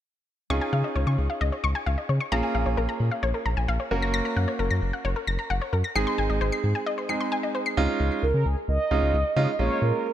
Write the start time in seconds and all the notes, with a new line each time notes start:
0.50 C#2 C#4 D#4 F4 G#4 C#6
0.61 G#5
0.73 C#3 F5
0.84 D#5
0.95 C#2 C#5
1.07 C#3 C#6
1.18 C#2
1.30 F5
1.41 C#2 D#5
1.52 C#5
1.64 C#2 C#6
1.75 G#5
1.86 C#2 F5
1.98 D#5
2.09 C#3 C#5
2.20 C#6
2.32 A#1 A#3 C#4 F4 G#4 A#5
2.43 G#5
2.55 A#1 F5
2.66 A#1 C#5
2.77 A#1 A#4
2.89 A#5
3.00 A#2
3.11 F5
3.23 A#1 C#5
3.34 A#4
3.46 A#1 A#5
3.57 A#1 G#5
3.68 A#1 F5
3.80 C#5
3.91 F#1 A#3 C#4 F#4 A#4
4.02 A#6
4.14 A#6
4.25 A#5
4.36 F#2 F#5
4.48 C#5
4.59 F#1 A#4
4.71 F#2 A#6
4.82 F#1
4.93 F#5
5.05 F#1 C#5
5.16 A#4
5.27 F#1 A#6
5.39 A#5
5.50 F#1 F#5
5.61 C#5
5.73 F#2 A#4
5.84 A#6
5.95 G#1 G#3 C4 D#4 G#4 C7
6.07 C6
6.18 G#1 G#5
6.30 G#1 D#5
6.41 G#1 C5
6.52 C7
6.64 G#2
6.75 G#5
6.86 D#5
6.98 C5
7.09 G#3 C4 D#4 G#4 C7
7.21 C6
7.32 G#5
7.43 D#5
7.55 C5
7.66 C7
7.77 C#2 G#3 C#4 D#4 F4
8.00 C#2
8.23 C#2 A#4
8.34 C#3
8.46 C#2 G#4
8.68 C#2 D#5
8.91 C#2 G#3 C#4 D#4 F4
9.02 C#2
9.14 C#2
9.36 C#3 G#3 C#4 D#4 F4
9.59 A#1 G#3 A#3 C#4 F4 C#5
9.82 A#2 A#4